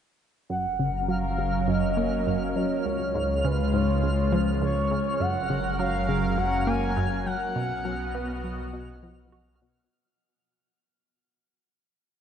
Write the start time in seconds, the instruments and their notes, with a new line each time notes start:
0.49 analog synth bass F#1, synth arpeggio sound F#2, analog synth pad F#3 C#4 A#4, analog synth lead F#5, synth texture F6
0.79 synth arpeggio sound C#3
1.08 synth arpeggio sound F#3, analog synth lead F5
1.38 synth arpeggio sound C#3
1.68 synth arpeggio sound F#2, analog synth lead D#5
1.97 synth arpeggio sound A#3
2.27 synth arpeggio sound F#2
2.49 analog synth lead D#5
2.56 synth arpeggio sound F#3, analog synth lead C#5
2.85 analog synth bass C#2, synth arpeggio sound C#2, analog synth pad C#3 G#3 F4
3.15 synth arpeggio sound G#2
3.44 synth arpeggio sound C#3, analog synth lead B4
3.73 synth arpeggio sound G#2, analog synth lead C#5
4.03 synth arpeggio sound C#2
4.32 synth arpeggio sound F3
4.62 synth arpeggio sound C#2, analog synth lead C#5
4.91 synth arpeggio sound C#3
5.20 analog synth bass F#1, synth arpeggio sound F#2, analog synth pad F#3 C#4 A#4, analog synth lead F#5
5.50 synth arpeggio sound C#3
5.79 synth arpeggio sound F#3, analog synth lead F5
6.09 synth arpeggio sound C#3
6.38 synth arpeggio sound F#2, analog synth lead F#5
6.67 synth arpeggio sound A#3, analog synth lead G#5
6.97 synth arpeggio sound F#2
7.26 synth arpeggio sound F#3, analog synth lead F#5
7.55 analog synth bass B1, synth arpeggio sound B2, analog synth pad B3 F#4 D#5
7.85 synth arpeggio sound F#3
8.15 synth arpeggio sound B3
8.44 synth arpeggio sound F#3
8.73 synth arpeggio sound B2
9.03 synth arpeggio sound F3
9.32 synth arpeggio sound F#4
9.62 synth arpeggio sound B2